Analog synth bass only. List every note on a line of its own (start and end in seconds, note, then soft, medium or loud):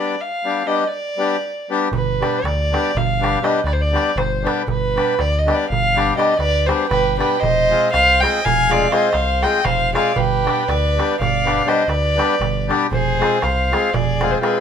1.92 2.23 G1 loud
2.44 2.75 D2 medium
2.95 3.36 G1 loud
3.64 3.95 D2 loud
4.16 4.47 G1 loud
4.67 4.98 G1 loud
5.19 5.50 D2 medium
5.70 6.11 G1 loud
6.39 6.70 D2 medium
6.91 7.22 G1 loud
7.42 7.73 F1 loud
7.94 8.25 C2 medium
8.46 8.86 F1 loud
9.14 9.45 C2 medium
9.65 9.96 F1 loud
10.17 10.48 G1 medium
10.68 10.99 D2 medium
11.20 11.61 G1 loud
11.88 12.19 D2 medium
12.40 12.70 G1 loud
12.91 13.22 F1 loud
13.43 13.74 C2 loud
13.94 14.35 F1 loud